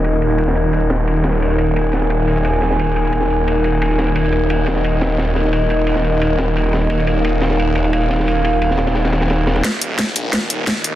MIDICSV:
0, 0, Header, 1, 4, 480
1, 0, Start_track
1, 0, Tempo, 342857
1, 60, Time_signature, 4, 2, 24, 8
1, 15331, End_track
2, 0, Start_track
2, 0, Title_t, "Analog synth pad"
2, 0, Program_c, 0, 89
2, 0, Note_on_c, 0, 63, 80
2, 0, Note_on_c, 0, 70, 75
2, 0, Note_on_c, 0, 75, 88
2, 1966, Note_off_c, 0, 75, 0
2, 1983, Note_on_c, 0, 80, 88
2, 5807, Note_off_c, 0, 80, 0
2, 5821, Note_on_c, 0, 75, 89
2, 9646, Note_off_c, 0, 75, 0
2, 9661, Note_on_c, 0, 77, 88
2, 13444, Note_off_c, 0, 63, 0
2, 13444, Note_off_c, 0, 70, 0
2, 13486, Note_off_c, 0, 77, 0
2, 13500, Note_on_c, 0, 63, 80
2, 13500, Note_on_c, 0, 70, 73
2, 13500, Note_on_c, 0, 75, 90
2, 15331, Note_off_c, 0, 63, 0
2, 15331, Note_off_c, 0, 70, 0
2, 15331, Note_off_c, 0, 75, 0
2, 15331, End_track
3, 0, Start_track
3, 0, Title_t, "Detuned saw bass"
3, 0, Program_c, 1, 39
3, 0, Note_on_c, 1, 27, 86
3, 5796, Note_off_c, 1, 27, 0
3, 5820, Note_on_c, 1, 27, 89
3, 13476, Note_off_c, 1, 27, 0
3, 13500, Note_on_c, 1, 27, 94
3, 14201, Note_off_c, 1, 27, 0
3, 14219, Note_on_c, 1, 34, 96
3, 14441, Note_off_c, 1, 34, 0
3, 14461, Note_on_c, 1, 27, 97
3, 15331, Note_off_c, 1, 27, 0
3, 15331, End_track
4, 0, Start_track
4, 0, Title_t, "Drums"
4, 59, Note_on_c, 9, 51, 88
4, 199, Note_off_c, 9, 51, 0
4, 304, Note_on_c, 9, 51, 69
4, 422, Note_off_c, 9, 51, 0
4, 422, Note_on_c, 9, 51, 46
4, 532, Note_off_c, 9, 51, 0
4, 532, Note_on_c, 9, 51, 78
4, 669, Note_on_c, 9, 38, 47
4, 672, Note_off_c, 9, 51, 0
4, 773, Note_on_c, 9, 51, 67
4, 809, Note_off_c, 9, 38, 0
4, 913, Note_off_c, 9, 51, 0
4, 1018, Note_on_c, 9, 51, 79
4, 1158, Note_off_c, 9, 51, 0
4, 1256, Note_on_c, 9, 51, 76
4, 1262, Note_on_c, 9, 38, 92
4, 1396, Note_off_c, 9, 51, 0
4, 1402, Note_off_c, 9, 38, 0
4, 1501, Note_on_c, 9, 51, 77
4, 1641, Note_off_c, 9, 51, 0
4, 1729, Note_on_c, 9, 51, 67
4, 1737, Note_on_c, 9, 38, 53
4, 1857, Note_off_c, 9, 51, 0
4, 1857, Note_on_c, 9, 51, 42
4, 1877, Note_off_c, 9, 38, 0
4, 1989, Note_off_c, 9, 51, 0
4, 1989, Note_on_c, 9, 51, 87
4, 2099, Note_off_c, 9, 51, 0
4, 2099, Note_on_c, 9, 51, 44
4, 2216, Note_off_c, 9, 51, 0
4, 2216, Note_on_c, 9, 51, 69
4, 2356, Note_off_c, 9, 51, 0
4, 2465, Note_on_c, 9, 51, 86
4, 2605, Note_off_c, 9, 51, 0
4, 2697, Note_on_c, 9, 51, 64
4, 2704, Note_on_c, 9, 38, 52
4, 2822, Note_off_c, 9, 38, 0
4, 2822, Note_on_c, 9, 38, 46
4, 2837, Note_off_c, 9, 51, 0
4, 2941, Note_on_c, 9, 51, 88
4, 2962, Note_off_c, 9, 38, 0
4, 3081, Note_off_c, 9, 51, 0
4, 3183, Note_on_c, 9, 51, 71
4, 3302, Note_off_c, 9, 51, 0
4, 3302, Note_on_c, 9, 51, 47
4, 3423, Note_off_c, 9, 51, 0
4, 3423, Note_on_c, 9, 51, 85
4, 3543, Note_off_c, 9, 51, 0
4, 3543, Note_on_c, 9, 51, 43
4, 3663, Note_off_c, 9, 51, 0
4, 3663, Note_on_c, 9, 51, 61
4, 3665, Note_on_c, 9, 38, 45
4, 3787, Note_off_c, 9, 38, 0
4, 3787, Note_on_c, 9, 38, 43
4, 3803, Note_off_c, 9, 51, 0
4, 3909, Note_on_c, 9, 51, 83
4, 3927, Note_off_c, 9, 38, 0
4, 4049, Note_off_c, 9, 51, 0
4, 4142, Note_on_c, 9, 51, 66
4, 4266, Note_off_c, 9, 51, 0
4, 4266, Note_on_c, 9, 51, 45
4, 4374, Note_off_c, 9, 51, 0
4, 4374, Note_on_c, 9, 51, 84
4, 4490, Note_on_c, 9, 38, 41
4, 4514, Note_off_c, 9, 51, 0
4, 4625, Note_on_c, 9, 51, 62
4, 4630, Note_off_c, 9, 38, 0
4, 4765, Note_off_c, 9, 51, 0
4, 4865, Note_on_c, 9, 51, 88
4, 5005, Note_off_c, 9, 51, 0
4, 5094, Note_on_c, 9, 51, 64
4, 5234, Note_off_c, 9, 51, 0
4, 5341, Note_on_c, 9, 51, 86
4, 5481, Note_off_c, 9, 51, 0
4, 5577, Note_on_c, 9, 38, 54
4, 5580, Note_on_c, 9, 51, 69
4, 5712, Note_off_c, 9, 51, 0
4, 5712, Note_on_c, 9, 51, 43
4, 5717, Note_off_c, 9, 38, 0
4, 5816, Note_off_c, 9, 51, 0
4, 5816, Note_on_c, 9, 51, 80
4, 5943, Note_off_c, 9, 51, 0
4, 5943, Note_on_c, 9, 51, 43
4, 6052, Note_off_c, 9, 51, 0
4, 6052, Note_on_c, 9, 51, 66
4, 6192, Note_off_c, 9, 51, 0
4, 6297, Note_on_c, 9, 51, 90
4, 6437, Note_off_c, 9, 51, 0
4, 6528, Note_on_c, 9, 51, 65
4, 6548, Note_on_c, 9, 38, 55
4, 6662, Note_off_c, 9, 38, 0
4, 6662, Note_on_c, 9, 38, 50
4, 6668, Note_off_c, 9, 51, 0
4, 6780, Note_on_c, 9, 51, 88
4, 6802, Note_off_c, 9, 38, 0
4, 6920, Note_off_c, 9, 51, 0
4, 7019, Note_on_c, 9, 51, 72
4, 7021, Note_on_c, 9, 38, 95
4, 7145, Note_off_c, 9, 51, 0
4, 7145, Note_on_c, 9, 51, 40
4, 7161, Note_off_c, 9, 38, 0
4, 7256, Note_on_c, 9, 38, 93
4, 7266, Note_off_c, 9, 51, 0
4, 7266, Note_on_c, 9, 51, 72
4, 7382, Note_off_c, 9, 51, 0
4, 7382, Note_on_c, 9, 51, 39
4, 7396, Note_off_c, 9, 38, 0
4, 7494, Note_on_c, 9, 38, 45
4, 7501, Note_off_c, 9, 51, 0
4, 7501, Note_on_c, 9, 51, 65
4, 7626, Note_off_c, 9, 38, 0
4, 7626, Note_on_c, 9, 38, 41
4, 7641, Note_off_c, 9, 51, 0
4, 7737, Note_on_c, 9, 51, 83
4, 7766, Note_off_c, 9, 38, 0
4, 7877, Note_off_c, 9, 51, 0
4, 7978, Note_on_c, 9, 51, 67
4, 8102, Note_off_c, 9, 51, 0
4, 8102, Note_on_c, 9, 51, 42
4, 8211, Note_off_c, 9, 51, 0
4, 8211, Note_on_c, 9, 51, 84
4, 8340, Note_on_c, 9, 38, 46
4, 8351, Note_off_c, 9, 51, 0
4, 8459, Note_on_c, 9, 51, 63
4, 8480, Note_off_c, 9, 38, 0
4, 8599, Note_off_c, 9, 51, 0
4, 8698, Note_on_c, 9, 51, 81
4, 8838, Note_off_c, 9, 51, 0
4, 8940, Note_on_c, 9, 38, 110
4, 8947, Note_on_c, 9, 51, 76
4, 9080, Note_off_c, 9, 38, 0
4, 9087, Note_off_c, 9, 51, 0
4, 9191, Note_on_c, 9, 51, 84
4, 9331, Note_off_c, 9, 51, 0
4, 9419, Note_on_c, 9, 51, 60
4, 9425, Note_on_c, 9, 38, 52
4, 9539, Note_off_c, 9, 51, 0
4, 9539, Note_on_c, 9, 51, 41
4, 9565, Note_off_c, 9, 38, 0
4, 9656, Note_off_c, 9, 51, 0
4, 9656, Note_on_c, 9, 51, 78
4, 9790, Note_off_c, 9, 51, 0
4, 9790, Note_on_c, 9, 51, 45
4, 9898, Note_off_c, 9, 51, 0
4, 9898, Note_on_c, 9, 51, 73
4, 10038, Note_off_c, 9, 51, 0
4, 10142, Note_on_c, 9, 51, 79
4, 10282, Note_off_c, 9, 51, 0
4, 10380, Note_on_c, 9, 38, 60
4, 10380, Note_on_c, 9, 51, 69
4, 10499, Note_off_c, 9, 38, 0
4, 10499, Note_on_c, 9, 38, 53
4, 10520, Note_off_c, 9, 51, 0
4, 10631, Note_on_c, 9, 51, 84
4, 10639, Note_off_c, 9, 38, 0
4, 10771, Note_off_c, 9, 51, 0
4, 10854, Note_on_c, 9, 51, 67
4, 10977, Note_off_c, 9, 51, 0
4, 10977, Note_on_c, 9, 51, 44
4, 11100, Note_off_c, 9, 51, 0
4, 11100, Note_on_c, 9, 51, 81
4, 11221, Note_off_c, 9, 51, 0
4, 11221, Note_on_c, 9, 51, 41
4, 11339, Note_on_c, 9, 38, 45
4, 11346, Note_off_c, 9, 51, 0
4, 11346, Note_on_c, 9, 51, 65
4, 11472, Note_off_c, 9, 38, 0
4, 11472, Note_on_c, 9, 38, 41
4, 11486, Note_off_c, 9, 51, 0
4, 11588, Note_on_c, 9, 51, 82
4, 11612, Note_off_c, 9, 38, 0
4, 11728, Note_off_c, 9, 51, 0
4, 11822, Note_on_c, 9, 51, 72
4, 11941, Note_off_c, 9, 51, 0
4, 11941, Note_on_c, 9, 51, 39
4, 12062, Note_off_c, 9, 51, 0
4, 12062, Note_on_c, 9, 51, 91
4, 12187, Note_on_c, 9, 38, 47
4, 12202, Note_off_c, 9, 51, 0
4, 12288, Note_off_c, 9, 38, 0
4, 12288, Note_on_c, 9, 38, 103
4, 12297, Note_on_c, 9, 51, 77
4, 12415, Note_off_c, 9, 38, 0
4, 12415, Note_on_c, 9, 38, 102
4, 12419, Note_off_c, 9, 51, 0
4, 12419, Note_on_c, 9, 51, 75
4, 12529, Note_off_c, 9, 38, 0
4, 12529, Note_on_c, 9, 38, 92
4, 12535, Note_off_c, 9, 51, 0
4, 12535, Note_on_c, 9, 51, 80
4, 12664, Note_off_c, 9, 38, 0
4, 12664, Note_on_c, 9, 38, 104
4, 12667, Note_off_c, 9, 51, 0
4, 12667, Note_on_c, 9, 51, 80
4, 12776, Note_off_c, 9, 38, 0
4, 12776, Note_on_c, 9, 38, 112
4, 12780, Note_off_c, 9, 51, 0
4, 12780, Note_on_c, 9, 51, 72
4, 12895, Note_off_c, 9, 38, 0
4, 12895, Note_on_c, 9, 38, 102
4, 12907, Note_off_c, 9, 51, 0
4, 12907, Note_on_c, 9, 51, 84
4, 13015, Note_off_c, 9, 51, 0
4, 13015, Note_on_c, 9, 51, 78
4, 13024, Note_off_c, 9, 38, 0
4, 13024, Note_on_c, 9, 38, 97
4, 13155, Note_off_c, 9, 51, 0
4, 13164, Note_off_c, 9, 38, 0
4, 13258, Note_on_c, 9, 38, 106
4, 13259, Note_on_c, 9, 51, 80
4, 13377, Note_off_c, 9, 51, 0
4, 13377, Note_on_c, 9, 51, 84
4, 13383, Note_off_c, 9, 38, 0
4, 13383, Note_on_c, 9, 38, 100
4, 13500, Note_on_c, 9, 36, 95
4, 13502, Note_off_c, 9, 38, 0
4, 13502, Note_on_c, 9, 38, 49
4, 13502, Note_on_c, 9, 42, 80
4, 13517, Note_off_c, 9, 51, 0
4, 13640, Note_off_c, 9, 36, 0
4, 13642, Note_off_c, 9, 38, 0
4, 13642, Note_off_c, 9, 42, 0
4, 13741, Note_on_c, 9, 42, 95
4, 13881, Note_off_c, 9, 42, 0
4, 13981, Note_on_c, 9, 36, 99
4, 13981, Note_on_c, 9, 38, 50
4, 13981, Note_on_c, 9, 42, 82
4, 14121, Note_off_c, 9, 36, 0
4, 14121, Note_off_c, 9, 38, 0
4, 14121, Note_off_c, 9, 42, 0
4, 14222, Note_on_c, 9, 42, 93
4, 14362, Note_off_c, 9, 42, 0
4, 14460, Note_on_c, 9, 36, 96
4, 14461, Note_on_c, 9, 38, 54
4, 14461, Note_on_c, 9, 42, 83
4, 14600, Note_off_c, 9, 36, 0
4, 14601, Note_off_c, 9, 38, 0
4, 14601, Note_off_c, 9, 42, 0
4, 14701, Note_on_c, 9, 42, 94
4, 14841, Note_off_c, 9, 42, 0
4, 14940, Note_on_c, 9, 36, 95
4, 14941, Note_on_c, 9, 38, 56
4, 14941, Note_on_c, 9, 42, 82
4, 15080, Note_off_c, 9, 36, 0
4, 15081, Note_off_c, 9, 38, 0
4, 15081, Note_off_c, 9, 42, 0
4, 15181, Note_on_c, 9, 42, 95
4, 15321, Note_off_c, 9, 42, 0
4, 15331, End_track
0, 0, End_of_file